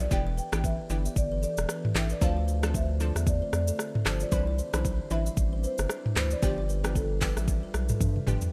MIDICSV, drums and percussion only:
0, 0, Header, 1, 2, 480
1, 0, Start_track
1, 0, Tempo, 526316
1, 100, Time_signature, 4, 2, 24, 8
1, 7774, End_track
2, 0, Start_track
2, 0, Title_t, "Drums"
2, 101, Note_on_c, 9, 36, 116
2, 101, Note_on_c, 9, 82, 74
2, 192, Note_off_c, 9, 36, 0
2, 192, Note_off_c, 9, 82, 0
2, 345, Note_on_c, 9, 82, 58
2, 436, Note_off_c, 9, 82, 0
2, 480, Note_on_c, 9, 82, 72
2, 481, Note_on_c, 9, 37, 120
2, 571, Note_off_c, 9, 82, 0
2, 573, Note_off_c, 9, 37, 0
2, 583, Note_on_c, 9, 36, 94
2, 586, Note_on_c, 9, 82, 77
2, 674, Note_off_c, 9, 36, 0
2, 678, Note_off_c, 9, 82, 0
2, 818, Note_on_c, 9, 82, 64
2, 909, Note_off_c, 9, 82, 0
2, 962, Note_on_c, 9, 82, 76
2, 1054, Note_off_c, 9, 82, 0
2, 1060, Note_on_c, 9, 36, 102
2, 1061, Note_on_c, 9, 82, 78
2, 1151, Note_off_c, 9, 36, 0
2, 1152, Note_off_c, 9, 82, 0
2, 1303, Note_on_c, 9, 82, 65
2, 1394, Note_off_c, 9, 82, 0
2, 1434, Note_on_c, 9, 82, 81
2, 1445, Note_on_c, 9, 37, 94
2, 1526, Note_off_c, 9, 82, 0
2, 1536, Note_off_c, 9, 37, 0
2, 1539, Note_on_c, 9, 37, 101
2, 1546, Note_on_c, 9, 82, 92
2, 1631, Note_off_c, 9, 37, 0
2, 1637, Note_off_c, 9, 82, 0
2, 1686, Note_on_c, 9, 45, 99
2, 1777, Note_off_c, 9, 45, 0
2, 1783, Note_on_c, 9, 37, 87
2, 1783, Note_on_c, 9, 39, 88
2, 1787, Note_on_c, 9, 46, 78
2, 1787, Note_on_c, 9, 82, 52
2, 1874, Note_off_c, 9, 37, 0
2, 1874, Note_off_c, 9, 39, 0
2, 1878, Note_off_c, 9, 46, 0
2, 1878, Note_off_c, 9, 82, 0
2, 1911, Note_on_c, 9, 82, 70
2, 2002, Note_off_c, 9, 82, 0
2, 2019, Note_on_c, 9, 82, 78
2, 2021, Note_on_c, 9, 36, 113
2, 2110, Note_off_c, 9, 82, 0
2, 2112, Note_off_c, 9, 36, 0
2, 2264, Note_on_c, 9, 82, 58
2, 2355, Note_off_c, 9, 82, 0
2, 2400, Note_on_c, 9, 82, 78
2, 2401, Note_on_c, 9, 37, 124
2, 2491, Note_off_c, 9, 82, 0
2, 2493, Note_off_c, 9, 37, 0
2, 2502, Note_on_c, 9, 36, 94
2, 2505, Note_on_c, 9, 82, 81
2, 2593, Note_off_c, 9, 36, 0
2, 2596, Note_off_c, 9, 82, 0
2, 2737, Note_on_c, 9, 82, 62
2, 2828, Note_off_c, 9, 82, 0
2, 2881, Note_on_c, 9, 37, 88
2, 2882, Note_on_c, 9, 82, 80
2, 2972, Note_off_c, 9, 37, 0
2, 2973, Note_off_c, 9, 82, 0
2, 2979, Note_on_c, 9, 36, 102
2, 2980, Note_on_c, 9, 82, 76
2, 3071, Note_off_c, 9, 36, 0
2, 3071, Note_off_c, 9, 82, 0
2, 3219, Note_on_c, 9, 37, 97
2, 3220, Note_on_c, 9, 82, 62
2, 3310, Note_off_c, 9, 37, 0
2, 3312, Note_off_c, 9, 82, 0
2, 3352, Note_on_c, 9, 82, 85
2, 3443, Note_off_c, 9, 82, 0
2, 3457, Note_on_c, 9, 37, 100
2, 3463, Note_on_c, 9, 82, 89
2, 3548, Note_off_c, 9, 37, 0
2, 3555, Note_off_c, 9, 82, 0
2, 3605, Note_on_c, 9, 45, 99
2, 3696, Note_off_c, 9, 45, 0
2, 3700, Note_on_c, 9, 37, 89
2, 3700, Note_on_c, 9, 39, 88
2, 3704, Note_on_c, 9, 46, 79
2, 3704, Note_on_c, 9, 82, 57
2, 3791, Note_off_c, 9, 37, 0
2, 3791, Note_off_c, 9, 39, 0
2, 3795, Note_off_c, 9, 46, 0
2, 3795, Note_off_c, 9, 82, 0
2, 3829, Note_on_c, 9, 82, 73
2, 3920, Note_off_c, 9, 82, 0
2, 3937, Note_on_c, 9, 82, 83
2, 3940, Note_on_c, 9, 36, 113
2, 4029, Note_off_c, 9, 82, 0
2, 4031, Note_off_c, 9, 36, 0
2, 4182, Note_on_c, 9, 82, 61
2, 4273, Note_off_c, 9, 82, 0
2, 4318, Note_on_c, 9, 82, 78
2, 4320, Note_on_c, 9, 37, 114
2, 4409, Note_off_c, 9, 82, 0
2, 4411, Note_off_c, 9, 37, 0
2, 4421, Note_on_c, 9, 36, 93
2, 4423, Note_on_c, 9, 82, 80
2, 4512, Note_off_c, 9, 36, 0
2, 4514, Note_off_c, 9, 82, 0
2, 4655, Note_on_c, 9, 82, 61
2, 4747, Note_off_c, 9, 82, 0
2, 4799, Note_on_c, 9, 82, 79
2, 4891, Note_off_c, 9, 82, 0
2, 4898, Note_on_c, 9, 36, 99
2, 4898, Note_on_c, 9, 82, 78
2, 4989, Note_off_c, 9, 36, 0
2, 4989, Note_off_c, 9, 82, 0
2, 5139, Note_on_c, 9, 82, 60
2, 5231, Note_off_c, 9, 82, 0
2, 5272, Note_on_c, 9, 82, 84
2, 5282, Note_on_c, 9, 37, 95
2, 5363, Note_off_c, 9, 82, 0
2, 5373, Note_off_c, 9, 37, 0
2, 5376, Note_on_c, 9, 37, 101
2, 5383, Note_on_c, 9, 82, 95
2, 5467, Note_off_c, 9, 37, 0
2, 5474, Note_off_c, 9, 82, 0
2, 5524, Note_on_c, 9, 45, 94
2, 5615, Note_off_c, 9, 45, 0
2, 5621, Note_on_c, 9, 37, 88
2, 5621, Note_on_c, 9, 39, 89
2, 5625, Note_on_c, 9, 46, 77
2, 5625, Note_on_c, 9, 82, 57
2, 5712, Note_off_c, 9, 37, 0
2, 5712, Note_off_c, 9, 39, 0
2, 5716, Note_off_c, 9, 46, 0
2, 5716, Note_off_c, 9, 82, 0
2, 5751, Note_on_c, 9, 82, 72
2, 5842, Note_off_c, 9, 82, 0
2, 5859, Note_on_c, 9, 82, 79
2, 5861, Note_on_c, 9, 36, 115
2, 5950, Note_off_c, 9, 82, 0
2, 5952, Note_off_c, 9, 36, 0
2, 6104, Note_on_c, 9, 82, 59
2, 6195, Note_off_c, 9, 82, 0
2, 6241, Note_on_c, 9, 82, 74
2, 6243, Note_on_c, 9, 37, 117
2, 6332, Note_off_c, 9, 82, 0
2, 6334, Note_off_c, 9, 37, 0
2, 6342, Note_on_c, 9, 36, 97
2, 6345, Note_on_c, 9, 82, 80
2, 6433, Note_off_c, 9, 36, 0
2, 6436, Note_off_c, 9, 82, 0
2, 6577, Note_on_c, 9, 46, 88
2, 6577, Note_on_c, 9, 82, 62
2, 6580, Note_on_c, 9, 36, 94
2, 6580, Note_on_c, 9, 39, 92
2, 6669, Note_off_c, 9, 46, 0
2, 6669, Note_off_c, 9, 82, 0
2, 6671, Note_off_c, 9, 36, 0
2, 6672, Note_off_c, 9, 39, 0
2, 6720, Note_on_c, 9, 37, 88
2, 6722, Note_on_c, 9, 82, 76
2, 6812, Note_off_c, 9, 37, 0
2, 6813, Note_off_c, 9, 82, 0
2, 6820, Note_on_c, 9, 36, 100
2, 6820, Note_on_c, 9, 82, 81
2, 6911, Note_off_c, 9, 36, 0
2, 6911, Note_off_c, 9, 82, 0
2, 7060, Note_on_c, 9, 37, 98
2, 7061, Note_on_c, 9, 82, 62
2, 7151, Note_off_c, 9, 37, 0
2, 7152, Note_off_c, 9, 82, 0
2, 7193, Note_on_c, 9, 82, 79
2, 7201, Note_on_c, 9, 45, 95
2, 7284, Note_off_c, 9, 82, 0
2, 7292, Note_off_c, 9, 45, 0
2, 7301, Note_on_c, 9, 36, 95
2, 7301, Note_on_c, 9, 48, 64
2, 7304, Note_on_c, 9, 82, 88
2, 7392, Note_off_c, 9, 48, 0
2, 7393, Note_off_c, 9, 36, 0
2, 7396, Note_off_c, 9, 82, 0
2, 7441, Note_on_c, 9, 47, 67
2, 7532, Note_off_c, 9, 47, 0
2, 7541, Note_on_c, 9, 45, 101
2, 7546, Note_on_c, 9, 82, 55
2, 7632, Note_off_c, 9, 45, 0
2, 7638, Note_off_c, 9, 82, 0
2, 7672, Note_on_c, 9, 82, 69
2, 7682, Note_on_c, 9, 43, 100
2, 7764, Note_off_c, 9, 82, 0
2, 7773, Note_off_c, 9, 43, 0
2, 7774, End_track
0, 0, End_of_file